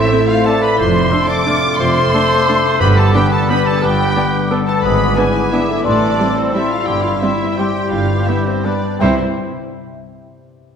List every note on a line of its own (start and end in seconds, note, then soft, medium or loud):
0.00 0.80 A2 medium
0.00 0.75 A3 medium
0.00 0.76 A3 medium
0.00 0.75 C4 medium
0.00 2.83 C4 soft
0.00 0.11 E4 soft
0.00 0.30 E4 medium
0.00 0.46 A4 medium
0.00 0.11 C5 medium
0.00 0.28 C5 soft
0.00 0.28 E5 medium
0.00 0.81 E5 soft
0.00 0.55 C6 medium
0.12 0.20 A3 medium
0.12 0.20 C4 medium
0.12 0.62 E4 medium
0.12 0.46 C5 medium
0.28 0.44 F4 medium
0.28 2.82 C5 soft
0.28 0.46 F5 medium
0.45 0.55 A3 medium
0.45 0.54 C4 soft
0.45 0.64 A4 medium
0.45 1.46 A4 medium
0.45 0.79 D5 medium
0.45 0.63 A5 medium
0.62 0.80 E4 soft
0.62 0.78 B4 medium
0.62 0.79 B5 medium
0.78 1.05 F1 medium
0.78 1.79 F2 medium
0.78 1.06 F2 medium
0.78 1.75 A3 medium
0.78 1.30 C5 medium
0.78 1.14 C5 medium
0.78 1.29 C6 medium
0.78 1.75 D6 medium
0.95 1.63 D4 soft
1.12 1.95 C3 soft
1.12 1.20 A3 medium
1.12 1.24 A3 medium
1.12 1.24 D4 soft
1.12 1.20 D4 medium
1.12 1.49 A4 medium
1.29 1.62 D5 medium
1.29 2.30 D5 soft
1.29 1.79 D6 medium
1.29 1.80 D6 medium
1.46 1.58 A3 medium
1.46 1.54 A3 medium
1.46 1.54 D4 medium
1.46 1.58 D4 medium
1.46 2.13 F4 medium
1.46 2.47 A4 medium
1.64 2.12 D4 medium
1.79 2.07 F1 medium
1.79 2.07 F2 medium
1.79 2.82 F2 medium
1.79 2.82 A3 medium
1.79 2.82 C5 medium
1.79 2.80 C6 loud
1.79 2.81 C6 medium
1.79 2.78 D6 medium
1.96 2.82 C3 soft
2.13 2.26 A3 soft
2.13 2.22 A3 medium
2.13 2.25 D4 soft
2.13 2.64 D4 soft
2.13 2.22 D4 medium
2.13 2.47 A4 medium
2.31 3.32 D5 soft
2.48 2.56 A3 medium
2.48 2.61 A3 soft
2.48 2.56 D4 medium
2.48 2.61 D4 medium
2.48 2.80 A4 medium
2.48 2.82 A4 medium
2.65 2.97 D4 medium
2.80 3.08 G1 medium
2.80 3.08 G2 medium
2.80 3.29 G2 medium
2.80 3.82 G2 medium
2.80 3.67 B3 medium
2.80 3.14 G4 medium
2.80 2.99 B4 medium
2.80 2.96 B5 medium
2.80 2.87 B5 medium
2.80 3.81 D6 medium
2.97 3.66 D4 soft
2.97 3.16 A4 medium
2.97 3.14 A5 medium
3.14 3.98 D3 soft
3.14 3.22 B3 medium
3.14 3.28 B3 soft
3.14 3.23 D4 medium
3.14 3.28 D4 soft
3.14 3.34 G4 medium
3.14 3.51 B4 medium
3.14 3.32 G5 medium
3.32 3.51 A4 medium
3.32 4.33 D5 soft
3.32 3.50 A5 medium
3.50 3.62 B3 soft
3.50 3.58 B3 medium
3.50 3.62 D4 medium
3.50 3.58 D4 soft
3.50 3.84 G4 medium
3.50 3.67 B4 medium
3.50 4.50 B4 medium
3.50 3.67 B5 medium
3.65 4.15 D4 medium
3.65 3.83 A4 medium
3.65 3.83 A5 medium
3.65 3.82 A5 medium
3.81 4.09 G1 medium
3.81 4.10 G2 medium
3.81 4.85 G2 medium
3.81 4.82 B3 medium
3.81 4.50 G4 medium
3.81 4.53 B4 medium
3.81 4.50 G5 medium
3.81 4.51 G5 medium
3.81 4.55 D6 medium
3.99 4.85 D3 soft
4.15 4.28 B3 soft
4.15 4.24 B3 medium
4.15 4.28 D4 soft
4.15 4.24 D4 medium
4.15 4.67 D4 soft
4.34 5.35 D5 soft
4.51 4.59 B3 medium
4.51 4.64 B3 medium
4.51 4.59 D4 soft
4.51 4.64 D4 medium
4.51 4.84 A4 medium
4.51 5.52 B4 medium
4.67 5.00 D4 soft
4.67 4.82 A4 medium
4.67 4.82 A5 medium
4.67 4.75 A5 medium
4.83 5.11 G#1 medium
4.83 5.11 G#2 medium
4.83 5.87 G#2 medium
4.83 5.17 B3 medium
4.83 5.19 G#4 medium
4.83 5.19 B4 medium
4.83 5.16 B5 medium
4.83 5.17 B5 medium
4.83 5.14 D6 medium
5.15 5.52 B3 medium
5.15 5.25 B3 medium
5.15 5.31 B3 soft
5.15 5.26 D4 medium
5.15 5.31 D4 soft
5.15 5.69 E4 soft
5.15 5.51 G#4 medium
5.15 5.63 B4 medium
5.15 5.52 G#5 medium
5.15 5.50 D6 medium
5.36 5.87 D5 soft
5.51 5.70 B3 medium
5.51 5.65 B3 soft
5.51 5.61 B3 soft
5.51 5.61 D4 soft
5.51 5.65 D4 soft
5.51 5.84 E4 medium
5.51 5.87 B4 soft
5.51 5.85 E5 medium
5.51 5.86 E5 medium
5.51 5.84 D6 medium
5.69 5.83 A3 soft
5.69 6.19 E4 soft
5.84 6.13 A1 medium
5.84 6.13 A2 medium
5.84 6.90 A2 medium
5.84 6.53 G3 medium
5.84 6.38 D4 medium
5.84 6.89 A4 medium
5.84 6.36 D5 medium
5.84 6.53 C6 medium
6.03 7.04 C4 soft
6.19 6.32 G3 soft
6.19 6.27 G3 medium
6.19 6.27 C4 soft
6.19 6.32 C4 soft
6.19 6.71 E4 soft
6.36 6.55 C4 medium
6.36 6.54 C5 medium
6.36 6.55 C5 medium
6.36 7.40 C5 soft
6.54 6.66 G3 soft
6.54 6.87 G3 soft
6.54 6.62 G3 soft
6.54 6.66 C4 soft
6.54 6.62 C4 soft
6.54 6.72 E4 medium
6.54 7.57 G4 soft
6.54 6.71 E5 medium
6.54 6.72 E5 medium
6.54 6.85 C6 medium
6.71 7.22 E4 soft
6.71 6.88 F4 medium
6.71 6.88 F5 medium
6.86 7.16 G1 medium
6.86 7.16 G2 medium
6.86 7.91 G2 soft
6.86 7.22 G3 soft
6.86 7.57 E4 medium
6.86 7.03 G4 medium
6.86 7.04 G5 medium
6.86 7.05 G5 medium
6.86 7.21 C6 soft
7.03 7.94 C4 soft
7.03 7.12 F4 soft
7.03 7.22 F5 medium
7.21 7.31 G3 soft
7.21 7.58 G3 soft
7.21 7.36 G3 soft
7.21 7.30 C4 soft
7.21 7.35 C4 soft
7.21 7.59 E4 medium
7.21 7.75 E4 soft
7.21 7.57 E5 medium
7.21 7.58 E5 medium
7.21 7.56 C6 soft
7.41 7.94 C5 soft
7.56 7.70 G3 soft
7.56 7.91 G3 soft
7.56 7.67 G3 soft
7.56 7.70 C4 soft
7.56 7.67 C4 soft
7.56 8.67 G4 medium
7.56 7.93 G4 soft
7.56 8.65 G4 soft
7.56 7.91 G5 medium
7.56 7.92 G5 medium
7.56 7.91 C6 soft
7.76 7.94 E4 soft
7.91 8.20 G1 soft
7.91 8.21 G2 soft
7.91 9.03 G2 soft
7.91 8.38 G3 soft
7.91 8.29 F4 medium
7.91 8.26 F5 medium
7.91 8.27 F5 medium
7.91 8.62 B5 soft
8.10 9.03 B3 soft
8.26 8.36 G3 soft
8.26 8.41 G3 soft
8.26 8.41 B3 soft
8.26 8.36 B3 soft
8.26 8.83 D4 soft
8.26 8.47 E4 medium
8.26 8.45 E5 soft
8.26 8.46 E5 medium
8.45 8.64 C4 soft
8.45 9.03 B4 soft
8.45 8.64 C5 soft
8.45 8.64 C5 medium
8.63 8.73 G3 soft
8.63 8.82 G3 soft
8.63 8.79 G3 soft
8.63 8.73 B3 soft
8.63 8.79 B3 soft
8.63 9.00 D4 soft
8.63 9.00 G4 soft
8.63 8.84 B4 soft
8.63 9.00 D5 soft
8.63 9.01 D5 soft
8.63 8.82 B5 soft
8.84 9.03 D4 soft
8.99 9.20 C2 soft
8.99 9.20 C3 soft
8.99 9.20 C3 medium
8.99 9.17 C3 soft
8.99 9.20 G3 soft
8.99 9.16 G3 medium
8.99 9.20 C4 soft
8.99 9.20 E4 soft
8.99 9.15 E4 soft
8.99 9.20 E4 soft
8.99 9.16 E4 medium
8.99 9.20 G4 soft
8.99 9.19 C5 medium
8.99 9.15 C5 soft
8.99 9.15 C5 medium
8.99 9.20 C5 medium
8.99 9.19 G5 soft
9.04 9.20 E5 soft